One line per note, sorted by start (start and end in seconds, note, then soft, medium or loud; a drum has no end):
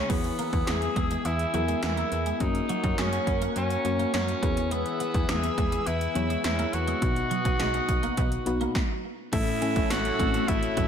0.00 0.12 C#4 medium
0.00 0.09 E4 medium
0.00 0.10 G#4 medium
0.00 0.10 B4 medium
0.00 0.11 C#5 medium
0.09 0.31 E2 loud
0.09 0.92 E3 medium
0.09 0.20 F#3 medium
0.09 0.86 B3 medium
0.09 0.69 B3 medium
0.09 0.86 E4 medium
0.09 2.38 G#4 medium
0.09 0.86 G#4 medium
0.09 0.86 B4 medium
0.09 2.38 E5 medium
0.09 2.38 G#5 medium
0.09 2.38 E6 medium
0.09 kick loud
0.09 closed hi-hat medium
0.09 crash medium
0.24 muted clean electric guitar stroke soft
0.24 closed hi-hat soft
0.39 0.48 A#3 medium
0.39 closed hi-hat medium
0.53 0.63 E2 medium
0.53 kick medium
0.53 closed hi-hat medium
0.67 0.88 E2 medium
0.67 1.27 G#4 loud
0.67 muted clean electric guitar stroke soft
0.67 snare loud
0.67 closed hi-hat medium
0.82 closed hi-hat medium
0.96 1.17 E2 medium
0.96 1.06 G#3 medium
0.96 kick medium
0.96 closed hi-hat medium
1.11 1.21 G#3 medium
1.11 closed hi-hat soft
1.25 1.46 E2 loud
1.25 1.83 E4 medium
1.25 muted clean electric guitar stroke soft
1.25 closed hi-hat medium
1.39 closed hi-hat medium
1.53 1.75 E2 loud
1.53 1.64 F#3 medium
1.53 2.11 B3 medium
1.53 2.11 E4 medium
1.53 2.11 G#4 medium
1.53 2.11 A#4 medium
1.53 closed hi-hat medium
1.68 1.78 G#3 medium
1.68 closed hi-hat soft
1.83 2.04 E2 loud
1.83 2.42 E4 medium
1.83 snare loud
1.83 closed hi-hat medium
1.97 2.07 A#3 medium
1.97 closed hi-hat soft
2.12 2.33 E2 medium
2.12 muted clean electric guitar stroke soft
2.12 closed hi-hat medium
2.26 2.36 G#3 medium
2.26 closed hi-hat medium
2.40 2.61 F#2 loud
2.40 3.16 A#3 medium
2.40 3.17 C#4 medium
2.40 3.00 D#4 medium
2.40 3.17 F#4 medium
2.40 4.40 A#4 medium
2.40 3.17 A#4 medium
2.40 4.40 C#5 medium
2.40 4.40 F#5 medium
2.40 4.40 C#6 medium
2.40 kick loud
2.40 closed hi-hat medium
2.55 muted clean electric guitar stroke soft
2.55 closed hi-hat soft
2.69 2.79 F#3 medium
2.69 closed hi-hat medium
2.84 2.94 F#2 loud
2.84 2.94 F#3 medium
2.84 kick medium
2.84 closed hi-hat medium
2.98 3.19 F#2 loud
2.98 3.08 G#3 medium
2.98 3.40 C#4 medium
2.98 snare loud
2.98 closed hi-hat medium
3.13 muted clean electric guitar stroke soft
3.13 closed hi-hat medium
3.27 3.48 F#2 medium
3.27 kick medium
3.27 closed hi-hat medium
3.42 3.51 A#3 medium
3.42 closed hi-hat medium
3.56 3.77 F#2 loud
3.56 3.66 C#4 medium
3.56 4.10 C#4 medium
3.56 closed hi-hat medium
3.70 closed hi-hat medium
3.84 4.06 F#2 medium
3.84 4.42 A#3 medium
3.84 4.42 C#4 medium
3.84 4.42 F#4 medium
3.84 4.42 C#5 medium
3.84 muted clean electric guitar stroke soft
3.84 closed hi-hat medium
3.99 4.09 A#3 medium
3.99 closed hi-hat soft
4.14 4.34 F#2 loud
4.14 4.74 C#4 medium
4.14 muted clean electric guitar stroke soft
4.14 snare loud
4.14 closed hi-hat medium
4.28 closed hi-hat soft
4.42 4.84 E2 loud
4.42 5.25 E3 medium
4.42 5.34 B3 medium
4.42 4.52 B3 medium
4.42 5.35 E4 medium
4.42 5.35 G#4 medium
4.42 8.71 B4 medium
4.42 5.35 B4 medium
4.42 7.00 E5 medium
4.42 7.00 G#5 medium
4.42 7.00 E6 medium
4.42 kick loud
4.42 closed hi-hat medium
4.57 4.67 C#4 medium
4.57 closed hi-hat medium
4.71 4.81 G#3 medium
4.71 5.31 B3 medium
4.71 closed hi-hat medium
4.86 muted clean electric guitar stroke soft
4.86 closed hi-hat medium
5.00 5.10 B3 medium
5.00 closed hi-hat medium
5.14 5.25 E2 medium
5.14 kick medium
5.14 closed hi-hat medium
5.29 5.50 E2 loud
5.29 5.88 G#4 loud
5.29 muted clean electric guitar stroke soft
5.29 snare loud
5.29 closed hi-hat medium
5.43 closed hi-hat medium
5.58 5.79 E2 medium
5.58 5.68 G#3 medium
5.58 kick medium
5.58 closed hi-hat medium
5.72 5.82 G#3 medium
5.72 closed hi-hat medium
5.87 6.07 E2 loud
5.87 6.44 E4 medium
5.87 muted clean electric guitar stroke soft
5.87 closed hi-hat medium
6.01 closed hi-hat medium
6.15 6.36 E2 medium
6.15 6.25 F#3 medium
6.15 6.72 B3 medium
6.15 6.73 E4 medium
6.15 6.73 G#4 medium
6.15 6.73 C#5 medium
6.15 closed hi-hat medium
6.30 6.40 G#3 medium
6.30 closed hi-hat soft
6.44 6.65 E2 loud
6.44 6.75 E4 medium
6.44 snare loud
6.44 closed hi-hat loud
6.59 6.68 A#3 medium
6.59 closed hi-hat soft
6.73 6.94 E2 medium
6.73 8.75 F#4 loud
6.73 muted clean electric guitar stroke soft
6.73 closed hi-hat medium
6.87 6.97 G#3 medium
6.87 closed hi-hat medium
7.01 7.23 B1 loud
7.01 7.85 B2 medium
7.01 7.78 B3 medium
7.01 7.78 D#4 medium
7.01 7.78 F#4 medium
7.01 7.79 B4 medium
7.01 8.73 D#5 medium
7.01 8.73 F#5 medium
7.01 8.73 D#6 medium
7.01 kick loud
7.01 closed hi-hat medium
7.16 muted clean electric guitar stroke soft
7.16 closed hi-hat medium
7.31 7.40 F#3 medium
7.31 closed hi-hat medium
7.45 7.56 B1 medium
7.45 7.55 F#3 medium
7.45 kick medium
7.45 closed hi-hat medium
7.60 7.81 B1 loud
7.60 7.69 G#3 medium
7.60 snare loud
7.60 closed hi-hat medium
7.74 muted clean electric guitar stroke soft
7.74 closed hi-hat medium
7.89 8.09 B1 medium
7.89 kick medium
7.89 closed hi-hat medium
8.03 8.13 A#3 medium
8.03 closed hi-hat medium
8.17 8.38 B1 loud
8.17 8.27 B3 medium
8.17 kick loud
8.17 closed hi-hat medium
8.32 closed hi-hat medium
8.46 8.67 B1 medium
8.46 8.75 B3 medium
8.46 8.75 D#4 medium
8.46 8.75 F#4 medium
8.46 8.75 B4 loud
8.46 muted clean electric guitar stroke soft
8.46 closed hi-hat medium
8.61 8.71 A#3 medium
8.61 closed hi-hat soft
8.75 kick loud
8.75 snare medium
9.32 9.54 A1 loud
9.32 9.88 A2 medium
9.32 10.15 A2 medium
9.32 9.90 E3 medium
9.32 9.52 A3 medium
9.32 9.43 A3 medium
9.32 9.91 A3 medium
9.32 9.52 C#4 medium
9.32 9.52 E4 medium
9.32 9.92 E4 loud
9.32 9.52 A4 medium
9.32 10.88 C#5 medium
9.32 10.88 E5 medium
9.32 10.88 A5 medium
9.32 10.88 E6 medium
9.32 kick loud
9.32 closed hi-hat medium
9.32 crash medium
9.47 muted clean electric guitar stroke soft
9.47 closed hi-hat medium
9.61 9.99 A3 medium
9.61 10.00 C#4 medium
9.61 9.71 C#4 medium
9.61 10.00 E4 medium
9.61 10.00 A4 medium
9.61 closed hi-hat medium
9.76 9.86 A1 medium
9.76 kick medium
9.76 closed hi-hat medium
9.90 10.11 A1 loud
9.90 10.46 A2 medium
9.90 10.48 E3 medium
9.90 10.49 A3 medium
9.90 10.50 F#4 loud
9.90 muted clean electric guitar stroke soft
9.90 snare loud
9.90 closed hi-hat medium
9.90 tambourine medium
10.05 closed hi-hat medium
10.19 10.40 A1 loud
10.19 10.88 A3 medium
10.19 10.29 A3 medium
10.19 10.26 C4 medium
10.19 10.88 E4 medium
10.19 10.88 F#4 medium
10.19 kick medium
10.19 closed hi-hat medium
10.26 10.88 C#4 medium
10.34 10.44 A3 medium
10.34 closed hi-hat medium
10.47 10.69 A1 loud
10.47 10.88 A2 medium
10.47 10.88 E3 medium
10.47 10.88 A3 medium
10.47 10.88 E4 loud
10.47 muted clean electric guitar stroke soft
10.47 kick medium
10.47 closed hi-hat medium
10.63 closed hi-hat medium
10.77 10.88 A1 loud
10.77 10.87 F#3 medium
10.77 kick medium
10.77 closed hi-hat medium